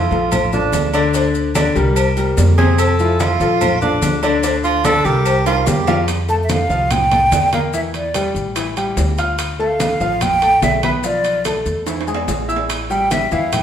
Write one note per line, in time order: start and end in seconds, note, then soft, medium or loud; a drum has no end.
0.00 0.52 F4 medium
0.11 0.69 A#1 medium
0.11 0.45 F3 medium
0.11 0.45 F4 medium
0.11 0.46 A4 medium
0.11 high conga soft
0.11 maracas soft
0.32 cowbell loud
0.32 high conga soft
0.32 low conga medium
0.32 low agogo loud
0.32 maracas medium
0.53 0.87 F3 medium
0.53 0.91 D4 medium
0.53 0.87 F4 medium
0.53 0.87 A4 medium
0.53 high conga soft
0.53 low conga medium
0.53 maracas soft
0.72 1.70 D2 loud
0.72 cowbell medium
0.72 high conga medium
0.72 low timbale medium
0.72 low agogo medium
0.72 maracas medium
0.93 1.11 D3 loud
0.93 1.11 D4 medium
0.93 1.11 D5 loud
0.93 low agogo loud
0.93 maracas soft
1.14 1.48 D3 medium
1.14 1.48 D4 medium
1.14 1.49 D5 medium
1.14 cowbell loud
1.14 high conga soft
1.14 low agogo medium
1.14 maracas medium
1.35 high conga soft
1.35 maracas soft
1.55 1.72 D3 medium
1.55 1.72 D4 medium
1.55 1.73 D5 medium
1.55 cowbell medium
1.55 high conga loud
1.55 low timbale medium
1.55 low agogo loud
1.55 maracas medium
1.75 2.33 C2 medium
1.75 2.09 G3 medium
1.75 2.10 G4 medium
1.75 2.10 A#4 medium
1.75 maracas soft
1.96 cowbell loud
1.96 high conga soft
1.96 low agogo loud
1.96 maracas medium
2.17 2.51 G3 medium
2.17 2.51 G4 medium
2.17 2.51 A#4 medium
2.17 high conga soft
2.17 low agogo medium
2.17 maracas soft
2.37 3.34 F2 loud
2.37 cowbell medium
2.37 high conga medium
2.37 low timbale medium
2.37 maracas medium
2.58 2.92 C3 loud
2.58 2.92 C4 loud
2.58 2.81 G#4 loud
2.58 2.92 C5 medium
2.58 cowbell medium
2.58 high conga medium
2.58 low agogo medium
2.58 maracas soft
2.78 3.22 A4 loud
2.78 cowbell loud
2.78 low agogo loud
2.78 maracas medium
2.99 3.33 F3 medium
2.99 3.33 E4 medium
2.99 3.34 F4 medium
2.99 high conga soft
2.99 maracas soft
3.20 3.81 F4 loud
3.20 cowbell medium
3.20 high conga loud
3.20 low timbale medium
3.20 low agogo medium
3.20 maracas medium
3.40 3.98 A#1 loud
3.40 3.74 F3 medium
3.40 3.75 F4 medium
3.40 3.75 A4 medium
3.40 high conga soft
3.40 maracas soft
3.61 cowbell loud
3.61 high conga soft
3.61 low conga medium
3.61 low agogo loud
3.61 maracas medium
3.82 4.16 F3 medium
3.82 4.20 D4 loud
3.82 4.16 F4 medium
3.82 4.16 A4 medium
3.82 high conga soft
3.82 low conga medium
3.82 maracas soft
4.02 4.99 D2 medium
4.02 cowbell medium
4.02 high conga loud
4.02 low timbale medium
4.02 low agogo medium
4.02 maracas medium
4.23 4.40 D3 medium
4.23 4.40 D4 medium
4.23 4.40 D5 loud
4.23 low agogo loud
4.23 maracas soft
4.43 4.77 D3 medium
4.43 4.77 D4 medium
4.43 4.78 D5 medium
4.43 cowbell loud
4.43 high conga soft
4.43 low agogo medium
4.43 maracas medium
4.64 4.86 F4 loud
4.64 high conga soft
4.64 maracas soft
4.84 5.01 D3 medium
4.84 5.02 D4 medium
4.84 5.06 A4 loud
4.84 5.02 D5 medium
4.84 cowbell medium
4.84 high conga loud
4.84 low timbale medium
4.84 low agogo loud
4.84 maracas medium
5.05 5.63 C2 loud
5.05 5.39 G3 medium
5.05 5.46 G4 loud
5.05 5.39 G4 medium
5.05 5.39 A#4 medium
5.05 maracas soft
5.25 cowbell loud
5.25 high conga soft
5.25 low agogo loud
5.25 maracas medium
5.46 5.80 G3 medium
5.46 5.69 F4 medium
5.46 5.80 G4 medium
5.46 5.81 A#4 medium
5.46 high bongo medium
5.46 high conga soft
5.46 high timbale medium
5.46 low agogo medium
5.46 maracas soft
5.67 6.64 F2 medium
5.67 5.98 G4 medium
5.67 cowbell medium
5.67 high conga medium
5.67 low timbale loud
5.67 maracas medium
5.87 6.04 F3 medium
5.87 6.05 F4 loud
5.87 6.05 F5 loud
5.87 cowbell medium
5.87 low bongo medium
5.87 high conga medium
5.87 low timbale medium
5.87 low agogo medium
5.87 maracas soft
6.08 high bongo medium
6.08 high conga soft
6.08 high timbale medium
6.08 maracas medium
6.28 6.63 A3 medium
6.28 6.63 A4 medium
6.28 6.63 A5 medium
6.28 6.35 A5 loud
6.28 high conga soft
6.28 maracas soft
6.44 6.52 E5 medium
6.49 6.93 F5 loud
6.49 high bongo medium
6.49 high conga loud
6.49 high timbale medium
6.49 low timbale medium
6.49 maracas medium
6.69 7.28 C2 medium
6.69 7.04 F3 medium
6.69 7.04 F4 medium
6.69 7.04 F5 medium
6.69 maracas soft
6.91 7.53 G5 loud
6.91 high bongo medium
6.91 high conga soft
6.91 low conga medium
6.91 high timbale loud
6.91 maracas medium
7.11 7.45 A3 medium
7.11 7.45 A4 medium
7.11 7.46 A5 medium
7.11 high conga soft
7.11 low conga medium
7.11 high timbale medium
7.11 maracas soft
7.31 8.29 E2 medium
7.31 high bongo medium
7.31 low bongo medium
7.31 high conga medium
7.31 high timbale medium
7.31 low timbale medium
7.31 maracas medium
7.53 7.70 A#3 medium
7.53 7.70 A#4 medium
7.53 7.60 F5 medium
7.53 7.70 A#5 medium
7.53 high conga medium
7.53 high timbale medium
7.53 maracas soft
7.73 8.07 E3 medium
7.73 8.07 E4 medium
7.73 8.08 E5 medium
7.73 7.80 E5 loud
7.73 high bongo medium
7.73 high conga soft
7.73 maracas medium
7.94 8.33 D5 medium
7.94 high bongo soft
7.94 high conga soft
7.94 high timbale medium
7.94 maracas soft
8.14 8.48 G3 medium
8.14 8.49 G4 medium
8.14 8.49 G5 medium
8.14 high bongo medium
8.14 high conga medium
8.14 high timbale medium
8.14 low timbale medium
8.14 maracas medium
8.35 8.93 A1 medium
8.35 high conga soft
8.35 maracas soft
8.56 8.73 E3 medium
8.56 8.73 E4 medium
8.56 8.73 E5 medium
8.56 high bongo medium
8.56 high conga soft
8.56 high timbale medium
8.56 maracas medium
8.77 9.11 G3 medium
8.77 9.11 G4 medium
8.77 9.11 G5 medium
8.77 high bongo soft
8.77 high conga soft
8.77 high timbale medium
8.77 maracas soft
8.97 9.94 D2 medium
8.97 high bongo medium
8.97 low bongo medium
8.97 high conga soft
8.97 low timbale medium
8.97 maracas medium
9.18 9.52 F4 medium
9.18 9.52 F5 medium
9.18 9.53 F6 medium
9.18 high bongo soft
9.18 high conga soft
9.18 high timbale medium
9.18 maracas soft
9.39 high bongo medium
9.39 high conga soft
9.39 high timbale loud
9.39 maracas medium
9.59 9.93 A3 medium
9.59 9.93 A4 medium
9.59 10.24 F5 loud
9.59 9.94 A5 medium
9.59 high conga soft
9.59 maracas soft
9.80 high bongo medium
9.80 high conga loud
9.80 high timbale medium
9.80 low timbale medium
9.80 maracas medium
10.00 10.59 A1 medium
10.00 10.35 F3 medium
10.00 10.35 F4 medium
10.00 10.35 F5 medium
10.00 maracas soft
10.21 10.65 G5 loud
10.21 high bongo medium
10.21 high conga soft
10.21 low conga medium
10.21 high timbale medium
10.21 maracas medium
10.42 10.76 A3 medium
10.42 10.76 A4 medium
10.42 10.76 A5 medium
10.42 high conga soft
10.42 high timbale medium
10.42 maracas soft
10.62 11.60 B1 medium
10.62 10.84 E5 loud
10.62 high bongo medium
10.62 low bongo medium
10.62 high conga medium
10.62 high timbale medium
10.62 low timbale medium
10.62 maracas medium
10.83 11.01 B3 medium
10.83 11.01 B4 medium
10.83 10.90 E5 medium
10.83 11.01 B5 medium
10.83 high conga medium
10.83 high timbale medium
10.83 maracas soft
11.03 11.38 F3 medium
11.03 11.38 F4 medium
11.03 11.43 D5 medium
11.03 11.38 F5 medium
11.03 high bongo medium
11.03 high conga soft
11.03 maracas medium
11.24 high bongo soft
11.24 high conga soft
11.24 high timbale medium
11.24 maracas soft
11.45 11.79 A3 medium
11.45 11.79 A4 medium
11.45 11.80 A5 medium
11.45 high bongo medium
11.45 high conga medium
11.45 high timbale loud
11.45 low timbale medium
11.45 maracas medium
11.66 12.24 E2 medium
11.66 high conga soft
11.66 maracas soft
11.87 12.04 E3 medium
11.87 12.04 E4 medium
11.87 12.04 E5 medium
11.87 high bongo medium
11.87 high conga soft
11.87 high timbale medium
11.87 maracas medium
12.01 high timbale medium
12.07 12.41 G#3 medium
12.07 12.42 G#4 medium
12.07 12.42 G#5 medium
12.07 high bongo soft
12.07 high conga soft
12.07 maracas soft
12.14 low timbale loud
12.28 13.26 A1 medium
12.28 high bongo medium
12.28 low bongo medium
12.28 high conga soft
12.28 low timbale medium
12.28 maracas medium
12.48 12.83 E4 medium
12.48 12.83 E5 medium
12.48 12.83 E6 medium
12.48 high bongo soft
12.48 high conga soft
12.48 maracas soft
12.56 low timbale medium
12.70 high bongo medium
12.70 high conga soft
12.70 high timbale medium
12.70 maracas medium
12.90 13.24 G3 medium
12.90 13.24 G4 medium
12.90 13.25 G5 medium
12.90 13.13 G5 loud
12.90 high conga soft
12.90 maracas soft
13.11 13.34 E5 loud
13.11 high bongo medium
13.11 high conga medium
13.11 high timbale medium
13.11 low timbale medium
13.11 maracas medium
13.31 13.63 E2 medium
13.31 13.63 E3 medium
13.31 13.63 E4 medium
13.31 13.63 E5 medium
13.31 13.55 F5 loud
13.31 maracas soft
13.52 13.63 G5 loud
13.52 high bongo medium
13.52 high conga soft
13.52 low conga medium
13.52 high timbale loud
13.52 maracas medium